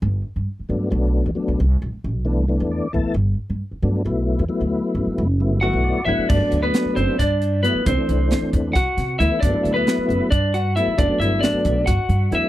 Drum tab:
CC |-------|-------|-------|-------|
HH |-------|-------|-------|-------|
SD |-------|-------|-------|-------|
BD |-------|-------|-------|-------|

CC |x------|-------|-------|-------|
HH |-xxxxxx|xxxxxxx|xxxxxxx|xxxxxxx|
SD |--o-o--|--o-oo-|--o----|--o----|
BD |o---o--|o--oo--|o---o--|o--oo--|